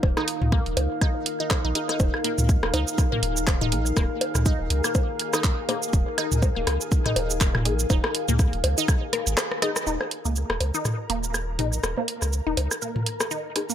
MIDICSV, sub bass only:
0, 0, Header, 1, 2, 480
1, 0, Start_track
1, 0, Tempo, 491803
1, 31, Time_signature, 4, 2, 24, 8
1, 13416, End_track
2, 0, Start_track
2, 0, Title_t, "Sub bass"
2, 0, Program_c, 0, 38
2, 30, Note_on_c, 0, 27, 100
2, 140, Note_off_c, 0, 27, 0
2, 406, Note_on_c, 0, 37, 83
2, 593, Note_off_c, 0, 37, 0
2, 646, Note_on_c, 0, 27, 79
2, 730, Note_off_c, 0, 27, 0
2, 750, Note_on_c, 0, 37, 97
2, 860, Note_off_c, 0, 37, 0
2, 1606, Note_on_c, 0, 34, 96
2, 1690, Note_off_c, 0, 34, 0
2, 1950, Note_on_c, 0, 27, 96
2, 2060, Note_off_c, 0, 27, 0
2, 2327, Note_on_c, 0, 37, 82
2, 2513, Note_off_c, 0, 37, 0
2, 2566, Note_on_c, 0, 27, 80
2, 2650, Note_off_c, 0, 27, 0
2, 2670, Note_on_c, 0, 37, 99
2, 2780, Note_off_c, 0, 37, 0
2, 3150, Note_on_c, 0, 27, 90
2, 3631, Note_on_c, 0, 34, 98
2, 3645, Note_off_c, 0, 27, 0
2, 3830, Note_off_c, 0, 34, 0
2, 3871, Note_on_c, 0, 27, 97
2, 3980, Note_off_c, 0, 27, 0
2, 4246, Note_on_c, 0, 37, 83
2, 4433, Note_off_c, 0, 37, 0
2, 4486, Note_on_c, 0, 27, 79
2, 4570, Note_off_c, 0, 27, 0
2, 4590, Note_on_c, 0, 37, 97
2, 4700, Note_off_c, 0, 37, 0
2, 5790, Note_on_c, 0, 27, 100
2, 5900, Note_off_c, 0, 27, 0
2, 6166, Note_on_c, 0, 37, 86
2, 6353, Note_off_c, 0, 37, 0
2, 6406, Note_on_c, 0, 27, 78
2, 6490, Note_off_c, 0, 27, 0
2, 6510, Note_on_c, 0, 37, 98
2, 6620, Note_off_c, 0, 37, 0
2, 6990, Note_on_c, 0, 27, 89
2, 7471, Note_on_c, 0, 34, 100
2, 7486, Note_off_c, 0, 27, 0
2, 7670, Note_off_c, 0, 34, 0
2, 7710, Note_on_c, 0, 27, 99
2, 7820, Note_off_c, 0, 27, 0
2, 8087, Note_on_c, 0, 37, 86
2, 8274, Note_off_c, 0, 37, 0
2, 8327, Note_on_c, 0, 27, 81
2, 8410, Note_off_c, 0, 27, 0
2, 8431, Note_on_c, 0, 37, 97
2, 8540, Note_off_c, 0, 37, 0
2, 9046, Note_on_c, 0, 32, 86
2, 9130, Note_off_c, 0, 32, 0
2, 9631, Note_on_c, 0, 27, 93
2, 9740, Note_off_c, 0, 27, 0
2, 10007, Note_on_c, 0, 37, 77
2, 10193, Note_off_c, 0, 37, 0
2, 10247, Note_on_c, 0, 27, 74
2, 10330, Note_off_c, 0, 27, 0
2, 10350, Note_on_c, 0, 37, 94
2, 10460, Note_off_c, 0, 37, 0
2, 10830, Note_on_c, 0, 27, 82
2, 11311, Note_on_c, 0, 34, 92
2, 11325, Note_off_c, 0, 27, 0
2, 11510, Note_off_c, 0, 34, 0
2, 11551, Note_on_c, 0, 27, 92
2, 11660, Note_off_c, 0, 27, 0
2, 11927, Note_on_c, 0, 37, 82
2, 12113, Note_off_c, 0, 37, 0
2, 12166, Note_on_c, 0, 27, 74
2, 12250, Note_off_c, 0, 27, 0
2, 12271, Note_on_c, 0, 37, 92
2, 12380, Note_off_c, 0, 37, 0
2, 13416, End_track
0, 0, End_of_file